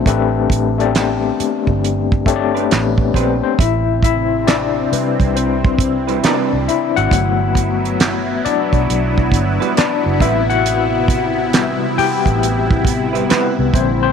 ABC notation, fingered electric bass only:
X:1
M:4/4
L:1/16
Q:"Swing 16ths" 1/4=68
K:Ador
V:1 name="Fingered electric bass" clef=bass
A,,,2 A,,,4 z G,,,4- G,,, A,,,2 _B,,, z | A,,,6 z C,,4- C,, z C,, z ^G,,, | G,,,6 z B,,, B,,,2 G,,, z2 F,,, A,,,2- | A,,,6 z A,,,4- A,,, z C,, _B,,,2 |]